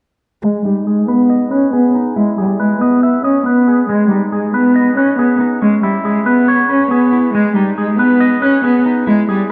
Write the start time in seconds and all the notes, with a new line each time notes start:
0.43 G#3
0.65 G3 D#4
0.87 G#3 G#4
1.08 B3 B4
1.30 D#5
1.51 C#4 B4
1.73 B3 G#4
1.95 D#4
2.16 G#3 E4
2.38 G3 G#4
2.60 G#3 B4
2.81 B3 D#5
3.03 E5
3.24 C#4 D#5
3.46 B3 B4
3.68 G#4
3.89 G#3
4.10 G3 D#4
4.32 G#3 G#4
4.54 B3 B4
4.76 D#5
4.97 C#4 B4
5.19 B3 G#4
5.40 D#4
5.62 G#3 C#4
5.83 G3 E4
6.05 G#3 G#4
6.26 B3 B4
6.48 C#5
6.69 C#4 B4
6.91 B3 G#4
7.13 E4
7.34 G#3
7.56 G3 D#4
7.78 G#3 G#4
7.99 B3 B4
8.20 D#5
8.42 C#4 B4
8.64 B3 G#4
8.86 D#4
9.07 G#3 E4
9.29 G3 G#4